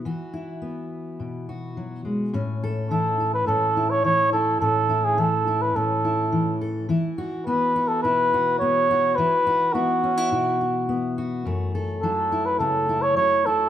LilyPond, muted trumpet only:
\new Staff \with { instrumentName = "Muted trumpet" } { \time 4/4 \key a \major \tempo 4 = 105 r1 | r4 a'8. b'16 a'8. cis''16 cis''8 a'8 | a'8. gis'16 a'8. b'16 a'4. r8 | r4 b'8. a'16 b'4 cis''4 |
b'4 fis'2~ fis'8 r8 | r4 a'8. b'16 a'8. cis''16 cis''8 a'8 | }